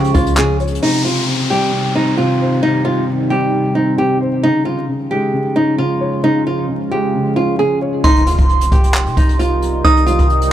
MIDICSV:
0, 0, Header, 1, 9, 480
1, 0, Start_track
1, 0, Tempo, 451128
1, 877, Time_signature, 4, 2, 24, 8
1, 11201, End_track
2, 0, Start_track
2, 0, Title_t, "Synth bell"
2, 0, Program_c, 0, 98
2, 0, Note_on_c, 0, 85, 107
2, 833, Note_off_c, 0, 85, 0
2, 8555, Note_on_c, 0, 84, 101
2, 10433, Note_off_c, 0, 84, 0
2, 10476, Note_on_c, 0, 87, 113
2, 11201, Note_off_c, 0, 87, 0
2, 11201, End_track
3, 0, Start_track
3, 0, Title_t, "Nylon-string guitar"
3, 0, Program_c, 1, 24
3, 0, Note_on_c, 1, 67, 77
3, 128, Note_off_c, 1, 67, 0
3, 153, Note_on_c, 1, 65, 86
3, 355, Note_off_c, 1, 65, 0
3, 398, Note_on_c, 1, 68, 86
3, 597, Note_off_c, 1, 68, 0
3, 879, Note_on_c, 1, 63, 99
3, 1078, Note_off_c, 1, 63, 0
3, 1116, Note_on_c, 1, 65, 72
3, 1316, Note_off_c, 1, 65, 0
3, 1598, Note_on_c, 1, 67, 75
3, 2049, Note_off_c, 1, 67, 0
3, 2079, Note_on_c, 1, 63, 82
3, 2278, Note_off_c, 1, 63, 0
3, 2314, Note_on_c, 1, 65, 76
3, 2766, Note_off_c, 1, 65, 0
3, 2796, Note_on_c, 1, 63, 104
3, 2996, Note_off_c, 1, 63, 0
3, 3030, Note_on_c, 1, 65, 79
3, 3232, Note_off_c, 1, 65, 0
3, 3514, Note_on_c, 1, 67, 76
3, 3966, Note_off_c, 1, 67, 0
3, 3991, Note_on_c, 1, 63, 70
3, 4193, Note_off_c, 1, 63, 0
3, 4237, Note_on_c, 1, 67, 75
3, 4437, Note_off_c, 1, 67, 0
3, 4719, Note_on_c, 1, 63, 103
3, 4918, Note_off_c, 1, 63, 0
3, 4950, Note_on_c, 1, 65, 72
3, 5153, Note_off_c, 1, 65, 0
3, 5434, Note_on_c, 1, 67, 80
3, 5886, Note_off_c, 1, 67, 0
3, 5913, Note_on_c, 1, 63, 84
3, 6114, Note_off_c, 1, 63, 0
3, 6154, Note_on_c, 1, 65, 87
3, 6606, Note_off_c, 1, 65, 0
3, 6637, Note_on_c, 1, 63, 101
3, 6837, Note_off_c, 1, 63, 0
3, 6881, Note_on_c, 1, 65, 73
3, 7079, Note_off_c, 1, 65, 0
3, 7357, Note_on_c, 1, 67, 76
3, 7808, Note_off_c, 1, 67, 0
3, 7832, Note_on_c, 1, 65, 81
3, 8034, Note_off_c, 1, 65, 0
3, 8076, Note_on_c, 1, 68, 81
3, 8276, Note_off_c, 1, 68, 0
3, 8555, Note_on_c, 1, 63, 109
3, 8755, Note_off_c, 1, 63, 0
3, 8797, Note_on_c, 1, 65, 74
3, 8996, Note_off_c, 1, 65, 0
3, 9279, Note_on_c, 1, 67, 81
3, 9729, Note_off_c, 1, 67, 0
3, 9759, Note_on_c, 1, 63, 87
3, 9958, Note_off_c, 1, 63, 0
3, 9994, Note_on_c, 1, 65, 80
3, 10446, Note_off_c, 1, 65, 0
3, 10475, Note_on_c, 1, 63, 111
3, 10676, Note_off_c, 1, 63, 0
3, 10709, Note_on_c, 1, 65, 86
3, 10912, Note_off_c, 1, 65, 0
3, 11201, End_track
4, 0, Start_track
4, 0, Title_t, "Ambient pad"
4, 0, Program_c, 2, 92
4, 0, Note_on_c, 2, 49, 84
4, 0, Note_on_c, 2, 53, 76
4, 0, Note_on_c, 2, 56, 78
4, 0, Note_on_c, 2, 65, 90
4, 838, Note_off_c, 2, 56, 0
4, 839, Note_off_c, 2, 49, 0
4, 839, Note_off_c, 2, 53, 0
4, 839, Note_off_c, 2, 65, 0
4, 875, Note_on_c, 2, 51, 73
4, 875, Note_on_c, 2, 55, 75
4, 876, Note_on_c, 2, 48, 84
4, 876, Note_on_c, 2, 63, 87
4, 4677, Note_off_c, 2, 51, 0
4, 4677, Note_off_c, 2, 55, 0
4, 4678, Note_off_c, 2, 48, 0
4, 4678, Note_off_c, 2, 63, 0
4, 4717, Note_on_c, 2, 53, 74
4, 4717, Note_on_c, 2, 56, 73
4, 4717, Note_on_c, 2, 65, 91
4, 4718, Note_on_c, 2, 49, 80
4, 8518, Note_off_c, 2, 53, 0
4, 8518, Note_off_c, 2, 56, 0
4, 8518, Note_off_c, 2, 65, 0
4, 8519, Note_off_c, 2, 49, 0
4, 8554, Note_on_c, 2, 51, 76
4, 8555, Note_on_c, 2, 48, 85
4, 8555, Note_on_c, 2, 55, 77
4, 8555, Note_on_c, 2, 63, 90
4, 11201, Note_off_c, 2, 48, 0
4, 11201, Note_off_c, 2, 51, 0
4, 11201, Note_off_c, 2, 55, 0
4, 11201, Note_off_c, 2, 63, 0
4, 11201, End_track
5, 0, Start_track
5, 0, Title_t, "Grand piano"
5, 0, Program_c, 3, 0
5, 0, Control_c, 3, 64, 127
5, 0, Note_on_c, 3, 49, 75
5, 0, Note_on_c, 3, 56, 88
5, 0, Note_on_c, 3, 61, 76
5, 0, Note_on_c, 3, 73, 86
5, 154, Note_off_c, 3, 61, 0
5, 154, Note_on_c, 3, 61, 93
5, 379, Note_off_c, 3, 49, 0
5, 395, Note_on_c, 3, 49, 93
5, 639, Note_off_c, 3, 73, 0
5, 639, Note_on_c, 3, 73, 84
5, 875, Note_off_c, 3, 61, 0
5, 876, Note_off_c, 3, 49, 0
5, 877, Note_off_c, 3, 56, 0
5, 877, Note_off_c, 3, 73, 0
5, 881, Note_on_c, 3, 48, 81
5, 892, Control_c, 3, 64, 0
5, 1102, Control_c, 3, 64, 127
5, 1345, Note_off_c, 3, 48, 0
5, 1361, Note_on_c, 3, 48, 72
5, 1597, Note_on_c, 3, 55, 98
5, 1819, Note_off_c, 3, 48, 0
5, 1835, Note_on_c, 3, 48, 70
5, 2077, Note_on_c, 3, 60, 82
5, 2299, Note_off_c, 3, 48, 0
5, 2315, Note_on_c, 3, 48, 87
5, 2556, Note_on_c, 3, 72, 84
5, 2778, Note_off_c, 3, 48, 0
5, 2794, Note_on_c, 3, 48, 95
5, 2797, Note_off_c, 3, 55, 0
5, 3259, Note_off_c, 3, 48, 0
5, 3275, Note_on_c, 3, 48, 74
5, 3276, Note_off_c, 3, 60, 0
5, 3515, Note_on_c, 3, 55, 92
5, 3742, Note_off_c, 3, 48, 0
5, 3756, Note_off_c, 3, 72, 0
5, 3758, Note_on_c, 3, 48, 71
5, 3997, Note_on_c, 3, 60, 77
5, 4218, Note_off_c, 3, 48, 0
5, 4234, Note_on_c, 3, 48, 80
5, 4474, Note_on_c, 3, 72, 82
5, 4715, Note_off_c, 3, 48, 0
5, 4715, Note_off_c, 3, 72, 0
5, 4716, Note_off_c, 3, 55, 0
5, 4716, Note_off_c, 3, 60, 0
5, 4716, Note_on_c, 3, 49, 91
5, 4730, Control_c, 3, 64, 0
5, 4938, Control_c, 3, 64, 127
5, 5181, Note_off_c, 3, 49, 0
5, 5197, Note_on_c, 3, 49, 70
5, 5435, Note_on_c, 3, 56, 92
5, 5659, Note_off_c, 3, 49, 0
5, 5675, Note_on_c, 3, 49, 72
5, 5917, Note_on_c, 3, 61, 73
5, 6138, Note_off_c, 3, 49, 0
5, 6154, Note_on_c, 3, 49, 87
5, 6392, Note_on_c, 3, 73, 86
5, 6617, Note_off_c, 3, 49, 0
5, 6633, Note_on_c, 3, 49, 87
5, 6636, Note_off_c, 3, 56, 0
5, 7099, Note_off_c, 3, 49, 0
5, 7115, Note_on_c, 3, 49, 71
5, 7117, Note_off_c, 3, 61, 0
5, 7356, Note_on_c, 3, 56, 86
5, 7582, Note_off_c, 3, 49, 0
5, 7594, Note_off_c, 3, 73, 0
5, 7598, Note_on_c, 3, 49, 71
5, 7831, Note_on_c, 3, 61, 86
5, 8057, Note_off_c, 3, 49, 0
5, 8073, Note_on_c, 3, 49, 89
5, 8316, Note_on_c, 3, 73, 81
5, 8554, Note_off_c, 3, 61, 0
5, 8555, Note_off_c, 3, 49, 0
5, 8556, Note_off_c, 3, 56, 0
5, 8556, Note_off_c, 3, 73, 0
5, 8570, Control_c, 3, 64, 0
5, 8728, Control_c, 3, 64, 127
5, 11201, End_track
6, 0, Start_track
6, 0, Title_t, "808-style bass"
6, 0, Program_c, 4, 38
6, 0, Note_on_c, 4, 49, 104
6, 142, Note_off_c, 4, 49, 0
6, 158, Note_on_c, 4, 37, 105
6, 848, Note_off_c, 4, 37, 0
6, 8555, Note_on_c, 4, 36, 108
6, 8797, Note_on_c, 4, 39, 102
6, 8813, Note_off_c, 4, 36, 0
6, 8918, Note_off_c, 4, 39, 0
6, 8923, Note_on_c, 4, 36, 106
6, 9262, Note_off_c, 4, 36, 0
6, 9276, Note_on_c, 4, 36, 111
6, 9644, Note_on_c, 4, 48, 104
6, 9660, Note_off_c, 4, 36, 0
6, 9751, Note_off_c, 4, 48, 0
6, 9757, Note_on_c, 4, 36, 105
6, 10448, Note_off_c, 4, 36, 0
6, 10476, Note_on_c, 4, 36, 116
6, 10829, Note_off_c, 4, 36, 0
6, 10843, Note_on_c, 4, 36, 103
6, 11201, Note_off_c, 4, 36, 0
6, 11201, End_track
7, 0, Start_track
7, 0, Title_t, "Downlifter"
7, 0, Program_c, 5, 103
7, 877, Note_on_c, 5, 60, 85
7, 4716, Note_off_c, 5, 60, 0
7, 11201, End_track
8, 0, Start_track
8, 0, Title_t, "Impact"
8, 0, Program_c, 6, 103
8, 8556, Note_on_c, 6, 60, 86
8, 10476, Note_off_c, 6, 60, 0
8, 11201, End_track
9, 0, Start_track
9, 0, Title_t, "Drums"
9, 45, Note_on_c, 9, 42, 55
9, 151, Note_off_c, 9, 42, 0
9, 156, Note_on_c, 9, 42, 76
9, 157, Note_on_c, 9, 36, 100
9, 262, Note_off_c, 9, 42, 0
9, 264, Note_off_c, 9, 36, 0
9, 282, Note_on_c, 9, 42, 61
9, 388, Note_off_c, 9, 42, 0
9, 395, Note_on_c, 9, 39, 109
9, 502, Note_off_c, 9, 39, 0
9, 636, Note_on_c, 9, 42, 48
9, 716, Note_off_c, 9, 42, 0
9, 716, Note_on_c, 9, 42, 66
9, 796, Note_off_c, 9, 42, 0
9, 796, Note_on_c, 9, 42, 80
9, 902, Note_off_c, 9, 42, 0
9, 8556, Note_on_c, 9, 36, 118
9, 8556, Note_on_c, 9, 42, 87
9, 8662, Note_off_c, 9, 36, 0
9, 8662, Note_off_c, 9, 42, 0
9, 8684, Note_on_c, 9, 42, 67
9, 8791, Note_off_c, 9, 42, 0
9, 8796, Note_on_c, 9, 42, 91
9, 8903, Note_off_c, 9, 42, 0
9, 8922, Note_on_c, 9, 36, 90
9, 8922, Note_on_c, 9, 42, 56
9, 9029, Note_off_c, 9, 36, 0
9, 9029, Note_off_c, 9, 42, 0
9, 9036, Note_on_c, 9, 42, 50
9, 9142, Note_off_c, 9, 42, 0
9, 9162, Note_on_c, 9, 42, 78
9, 9268, Note_off_c, 9, 42, 0
9, 9275, Note_on_c, 9, 42, 68
9, 9276, Note_on_c, 9, 36, 106
9, 9381, Note_off_c, 9, 42, 0
9, 9382, Note_off_c, 9, 36, 0
9, 9401, Note_on_c, 9, 42, 68
9, 9508, Note_off_c, 9, 42, 0
9, 9514, Note_on_c, 9, 42, 72
9, 9515, Note_on_c, 9, 39, 125
9, 9620, Note_off_c, 9, 42, 0
9, 9621, Note_off_c, 9, 39, 0
9, 9644, Note_on_c, 9, 42, 57
9, 9750, Note_off_c, 9, 42, 0
9, 9755, Note_on_c, 9, 42, 79
9, 9757, Note_on_c, 9, 36, 99
9, 9862, Note_off_c, 9, 42, 0
9, 9863, Note_off_c, 9, 36, 0
9, 9883, Note_on_c, 9, 42, 65
9, 9989, Note_off_c, 9, 42, 0
9, 9996, Note_on_c, 9, 42, 70
9, 10102, Note_off_c, 9, 42, 0
9, 10238, Note_on_c, 9, 42, 78
9, 10344, Note_off_c, 9, 42, 0
9, 10476, Note_on_c, 9, 36, 116
9, 10476, Note_on_c, 9, 42, 83
9, 10583, Note_off_c, 9, 36, 0
9, 10583, Note_off_c, 9, 42, 0
9, 10605, Note_on_c, 9, 42, 66
9, 10711, Note_off_c, 9, 42, 0
9, 10716, Note_on_c, 9, 42, 88
9, 10823, Note_off_c, 9, 42, 0
9, 10843, Note_on_c, 9, 36, 90
9, 10843, Note_on_c, 9, 42, 58
9, 10949, Note_off_c, 9, 36, 0
9, 10950, Note_off_c, 9, 42, 0
9, 10956, Note_on_c, 9, 42, 49
9, 11063, Note_off_c, 9, 42, 0
9, 11083, Note_on_c, 9, 42, 83
9, 11190, Note_off_c, 9, 42, 0
9, 11201, End_track
0, 0, End_of_file